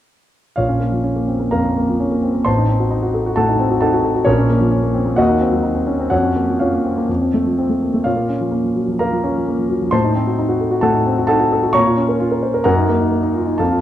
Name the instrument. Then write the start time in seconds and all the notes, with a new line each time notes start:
grand piano
0.56 A#1 F4 C#5 F5
0.69 C#4
0.80 A#3
0.92 F3
1.04 C#4
1.16 A#3
1.28 C4
1.40 A#3
1.51 F2 A#4 F5 A#5
1.65 C#4
1.77 A#3
1.88 F3
2.00 C#4
2.11 A#3
2.23 C4
2.34 A#3
2.45 A1 C5 A5 C6
2.57 D#4
2.69 C4
2.80 F#4
2.91 D#4
3.02 F#4
3.14 A4
3.26 F#4
3.36 A2 A4 F#5 A5
3.49 D#4
3.59 C4
3.71 F#4
3.81 D#4 A4 F#5 A5
3.93 F#4
4.04 A4
4.15 F#4
4.25 A#1 C#4 A#4 C#5
4.38 C#4
4.49 A#3
4.61 F3
4.71 C#4
4.83 A#3
4.94 C4
5.06 A#3
5.16 D#2 F#4 D#5 F#5
5.29 D#4
5.41 C4
5.52 F#3
5.63 D#4
5.75 C4
5.87 C#4
6.00 C4
6.10 F2 F#4 C#5 F#5
6.23 C#4
6.36 A#3
6.49 F3
6.59 C#4 F4 C#5 F5
6.73 A#3
6.85 C4
6.98 A#3
7.09 F2
7.21 C4
7.34 A3
7.46 F3
7.58 C4
7.70 A3
7.82 A#3
7.94 A3
8.04 A#2 F4 C#5 F5
8.17 A#3
8.29 C#4
8.41 F3
8.52 A#3
8.64 F3
8.76 F#3
8.88 F3
8.99 A#3 A#4 F5 A#5
9.12 F3
9.24 C#4
9.37 F3
9.48 A#3
9.59 F3
9.70 F#3
9.82 F3
9.91 A2 C5 A5 C6
10.04 D#4
10.16 C4
10.27 F#4
10.39 D#4
10.49 F#4
10.61 A4
10.71 F#4
10.81 A2 A4 F#5 A5
10.94 D#4
11.07 C4
11.18 F#4
11.27 D#4 A4 F#5 A5
11.40 F#4
11.52 A4
11.63 F#4
11.73 A#2 C#5 A#5 C#6
11.86 F4
11.97 C#4
12.09 A#4
12.20 F4
12.31 A#4
12.43 C5
12.54 A#4
12.64 F#2 A#4 F#5 A#5
12.77 D#4
12.89 A#3
13.00 D#4
13.12 A#3
13.23 D#4
13.35 F4
13.47 D#4
13.58 F2 A4 F5 A5
13.71 F4